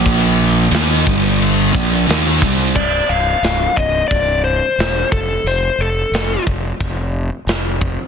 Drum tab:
CC |x-x-x-x-|x-------|--------|
HH |--------|--o-o-o-|o-o-o-o-|
SD |--o---o-|--o---o-|--o---o-|
BD |o--o-o-o|o--oo--o|---oo--o|